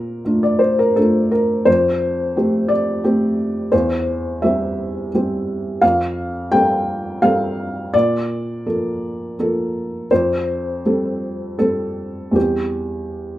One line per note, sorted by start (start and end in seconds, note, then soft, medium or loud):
0.00 0.22 A#2 medium
0.00 0.42 A#4 medium
0.25 0.93 A3 soft
0.25 0.93 D4 soft
0.25 0.94 F4 soft
0.43 0.61 D5 medium
0.59 0.78 C5 medium
0.79 0.97 A#4 medium
0.96 1.63 A3 soft
0.96 1.63 D4 soft
0.96 1.63 F4 soft
0.96 1.32 A4 medium
1.31 1.66 A#4 medium
1.65 2.33 F2 medium
1.65 2.69 C5 medium
2.36 3.01 A3 soft
2.36 3.01 C4 soft
2.36 3.01 G4 soft
2.68 3.72 D5 medium
3.04 3.68 A3 soft
3.04 3.69 C4 soft
3.04 3.69 G4 soft
3.72 4.40 E2 medium
3.72 4.42 C5 medium
4.42 5.09 G3 soft
4.42 5.09 C4 soft
4.42 5.09 G4 soft
4.42 5.12 E5 medium
5.14 5.79 G3 soft
5.14 5.80 C4 soft
5.14 5.80 G4 soft
5.82 6.50 F2 medium
5.82 6.52 F5 medium
6.52 7.19 G3 soft
6.52 7.19 C4 soft
6.52 7.19 A4 soft
6.52 7.22 G5 medium
7.22 7.89 G3 soft
7.22 7.89 C4 soft
7.22 7.90 A4 medium
7.22 7.93 F5 medium
7.94 8.64 A#2 medium
7.94 10.11 D5 medium
8.66 9.34 F3 soft
8.66 9.34 A#3 soft
8.66 9.34 A4 soft
9.39 10.07 F3 soft
9.39 10.07 A#3 soft
9.39 10.07 A4 medium
10.11 10.82 F2 medium
10.11 11.58 C5 medium
10.86 11.55 G3 soft
10.86 11.55 C4 soft
10.86 11.55 A4 soft
11.59 12.31 G3 soft
11.59 12.32 C4 soft
11.59 12.36 A4 medium
12.31 13.38 E2 soft
12.31 13.38 G3 soft
12.31 13.38 C4 soft
12.36 13.38 G4 medium